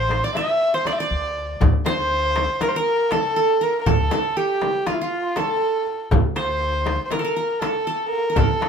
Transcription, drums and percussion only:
0.09 darbuka tek, frame drum
0.35 darbuka tek, frame drum
0.61 darbuka ka
0.85 darbuka tek, frame drum
1.61 frame drum, darbuka dum
1.86 darbuka tek, frame drum
2.12 darbuka ka
2.36 darbuka tek, frame drum
2.61 darbuka tek, frame drum
3.11 darbuka tek, frame drum
3.61 darbuka ka
3.86 darbuka dum, frame drum
4.11 darbuka tek, frame drum
4.37 darbuka ka
4.62 darbuka tek, frame drum
4.86 darbuka tek, frame drum
5.36 darbuka tek, frame drum
5.87 darbuka ka
6.11 darbuka dum, frame drum
6.36 darbuka tek
6.61 darbuka ka
6.86 darbuka tek, frame drum
7.11 darbuka tek, frame drum
7.61 darbuka tek, frame drum
8.13 darbuka ka
8.36 frame drum, darbuka dum
8.61 darbuka tek, frame drum

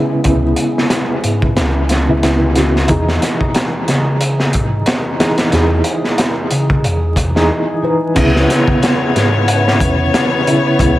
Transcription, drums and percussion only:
0.24 kick, closed hi-hat
0.56 closed hi-hat
0.78 snare
0.90 snare, closed hi-hat
1.24 closed hi-hat
1.42 kick
1.57 snare, closed hi-hat
1.89 snare, closed hi-hat
2.23 snare, closed hi-hat
2.55 snare, closed hi-hat
2.76 snare
2.88 kick, closed hi-hat
3.08 snare
3.22 snare, closed hi-hat
3.41 kick
3.54 snare, closed hi-hat
3.88 snare, closed hi-hat
4.21 closed hi-hat
4.40 snare
4.53 kick, closed hi-hat
4.86 snare, closed hi-hat
5.20 snare, closed hi-hat
5.38 snare, closed hi-hat
5.52 snare, closed hi-hat
5.84 closed hi-hat
6.04 snare
6.18 snare, closed hi-hat
6.50 closed hi-hat
6.70 kick
6.84 closed hi-hat
7.16 kick, closed hi-hat
7.36 snare
8.16 kick, closed hi-hat, crash
8.36 snare
8.50 snare, closed hi-hat
8.68 kick
8.83 snare, closed hi-hat
9.16 snare, closed hi-hat
9.48 closed hi-hat
9.68 snare
9.80 kick, closed hi-hat
10.14 snare, closed hi-hat
10.47 closed hi-hat
10.79 kick, closed hi-hat

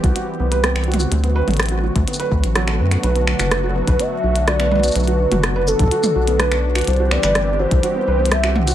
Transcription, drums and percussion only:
0.04 kick, closed hi-hat
0.16 closed hi-hat
0.52 closed hi-hat
0.64 cross-stick, closed hi-hat
0.76 finger snap, closed hi-hat
0.84 closed hi-hat
0.92 closed hi-hat
0.94 closed hi-hat, mid tom
1.00 shaker
1.12 closed hi-hat
1.24 closed hi-hat
1.48 closed hi-hat, mid tom
1.51 closed hi-hat
1.54 closed hi-hat
1.57 cross-stick, closed hi-hat
1.60 closed hi-hat
1.63 closed hi-hat
1.66 closed hi-hat
1.69 closed hi-hat
1.96 kick, closed hi-hat
2.08 closed hi-hat
2.14 shaker
2.20 closed hi-hat
2.32 kick
2.44 closed hi-hat
2.56 cross-stick, closed hi-hat
2.68 finger snap, closed hi-hat
2.91 finger snap, closed hi-hat
3.04 closed hi-hat
3.16 closed hi-hat
3.27 finger snap
3.39 finger snap, closed hi-hat, shaker
3.51 cross-stick, closed hi-hat
3.88 kick, closed hi-hat
4.00 closed hi-hat
4.36 closed hi-hat
4.48 cross-stick, closed hi-hat
4.60 finger snap, closed hi-hat
4.72 mid tom
4.76 mid tom
4.80 mid tom
4.84 closed hi-hat, shaker
4.88 shaker
4.92 closed hi-hat, shaker
4.96 shaker
5.00 shaker
5.04 shaker
5.08 closed hi-hat
5.32 closed hi-hat, mid tom
5.44 cross-stick, closed hi-hat
5.68 shaker
5.79 kick, closed hi-hat
5.84 kick
5.88 kick, closed hi-hat
6.03 mid tom, shaker
6.28 closed hi-hat
6.40 cross-stick, closed hi-hat
6.52 finger snap, closed hi-hat
6.75 finger snap, closed hi-hat
6.79 closed hi-hat
6.81 closed hi-hat
6.84 closed hi-hat
6.87 closed hi-hat
6.93 closed hi-hat
6.96 closed hi-hat
7.11 finger snap
7.23 finger snap, closed hi-hat, shaker
7.35 cross-stick, closed hi-hat
7.71 kick, closed hi-hat
7.83 closed hi-hat
8.26 closed hi-hat
8.32 cross-stick, closed hi-hat
8.44 finger snap, closed hi-hat
8.56 mid tom
8.68 closed hi-hat, shaker
8.70 shaker

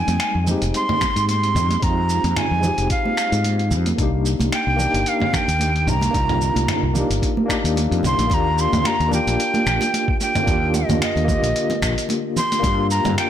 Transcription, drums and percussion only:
0.08 closed hi-hat, high conga, cabasa
0.20 finger snap, closed hi-hat, cabasa
0.47 high conga, low conga, cabasa
0.62 closed hi-hat, cabasa
0.74 closed hi-hat, cabasa
0.89 mid tom, high conga
1.01 finger snap, kick, low conga, cabasa
1.16 closed hi-hat, cabasa
1.28 closed hi-hat, high conga, cabasa
1.44 closed hi-hat
1.56 mid tom, cabasa
1.71 closed hi-hat, high conga, cabasa
1.82 kick, closed hi-hat, cabasa
2.09 cabasa
2.24 closed hi-hat, high conga, cabasa
2.37 finger snap, closed hi-hat, mid tom, cabasa
2.63 low conga, cabasa
2.78 closed hi-hat, cabasa
2.90 kick, closed hi-hat, cabasa
3.06 high conga
3.17 finger snap, cabasa
3.32 closed hi-hat, cabasa
3.44 closed hi-hat, high conga, cabasa
3.59 closed hi-hat
3.71 low conga, cabasa
3.86 closed hi-hat, high conga, cabasa
3.98 kick, closed hi-hat, cabasa
4.26 cabasa
4.40 closed hi-hat, high conga, cabasa
4.52 finger snap, closed hi-hat, cabasa
4.79 low conga, cabasa
4.94 closed hi-hat, cabasa
5.06 closed hi-hat, cabasa
5.20 mid tom, high conga
5.33 finger snap, kick, low conga, cabasa
5.49 closed hi-hat, cabasa
5.59 closed hi-hat, high conga, cabasa
5.76 closed hi-hat
5.88 mid tom, cabasa
6.01 closed hi-hat, high conga, cabasa
6.14 kick, closed hi-hat, cabasa
6.29 closed hi-hat, mid tom
6.41 cabasa
6.56 closed hi-hat, high conga, cabasa
6.68 finger snap, closed hi-hat, mid tom, cabasa
6.95 high conga, low conga, cabasa
7.11 closed hi-hat, cabasa
7.22 kick, closed hi-hat, cabasa
7.37 high conga
7.49 finger snap, kick, cabasa
7.65 closed hi-hat, cabasa
7.76 closed hi-hat, high conga, cabasa
7.92 closed hi-hat
8.03 mid tom, low conga, cabasa
8.18 closed hi-hat, high conga, cabasa
8.30 kick, closed hi-hat, muted conga, cabasa
8.58 cabasa
8.73 closed hi-hat, mid tom, high conga, cabasa
8.85 finger snap, closed hi-hat, muted conga, cabasa
9.01 closed hi-hat
9.12 low conga, cabasa
9.27 closed hi-hat, muted conga, cabasa
9.40 closed hi-hat, cabasa
9.54 closed hi-hat, high conga
9.66 finger snap, low conga, cabasa
9.81 closed hi-hat, muted conga, cabasa
9.94 closed hi-hat, high conga, cabasa
10.08 kick
10.21 muted conga, cabasa
10.35 closed hi-hat, mid tom, high conga, cabasa
10.47 kick, closed hi-hat, cabasa
10.74 muted conga, cabasa
10.89 closed hi-hat, mid tom, high conga, cabasa
11.02 finger snap, closed hi-hat, cabasa
11.16 closed hi-hat, muted conga
11.28 kick, high conga, low conga, cabasa
11.44 closed hi-hat, cabasa
11.56 closed hi-hat, cabasa
11.70 closed hi-hat, muted conga, high conga
11.82 finger snap, kick, cabasa
11.98 closed hi-hat, cabasa
12.09 closed hi-hat, muted conga, high conga, cabasa
12.37 low conga, cabasa
12.52 closed hi-hat, high conga, cabasa
12.63 kick, closed hi-hat, muted conga, cabasa
12.91 cabasa
13.05 closed hi-hat, mid tom, muted conga, high conga, cabasa
13.18 finger snap, closed hi-hat, cabasa

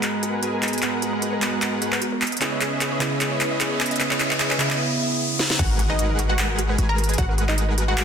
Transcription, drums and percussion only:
0.03 clap, closed hi-hat
0.23 closed hi-hat
0.43 closed hi-hat
0.62 clap, closed hi-hat
0.68 closed hi-hat
0.73 closed hi-hat
0.78 closed hi-hat
0.82 clap, closed hi-hat
1.02 closed hi-hat
1.22 closed hi-hat
1.42 clap, closed hi-hat
1.62 clap, closed hi-hat
1.82 closed hi-hat
1.92 clap
2.02 closed hi-hat
2.22 clap, closed hi-hat
2.27 closed hi-hat
2.32 closed hi-hat
2.37 closed hi-hat
2.41 clap, closed hi-hat
2.61 clap, closed hi-hat
2.81 clap, closed hi-hat
3.01 clap, closed hi-hat
3.21 clap, closed hi-hat
3.41 clap, closed hi-hat
3.61 clap, closed hi-hat
3.80 clap, closed hi-hat
3.86 closed hi-hat
3.91 closed hi-hat
3.96 closed hi-hat
4.00 clap, closed hi-hat
4.11 clap
4.20 clap, closed hi-hat
4.31 clap
4.40 clap, closed hi-hat
4.51 clap
4.60 clap, closed hi-hat
4.70 clap
5.39 snare
5.50 snare
5.59 kick, closed hi-hat, crash
5.79 closed hi-hat
5.99 closed hi-hat
6.19 closed hi-hat
6.39 clap, closed hi-hat
6.59 closed hi-hat
6.78 closed hi-hat
6.98 closed hi-hat
7.04 closed hi-hat
7.09 closed hi-hat
7.14 closed hi-hat
7.18 kick, closed hi-hat
7.38 closed hi-hat
7.49 clap
7.58 closed hi-hat
7.78 closed hi-hat
7.98 clap, closed hi-hat

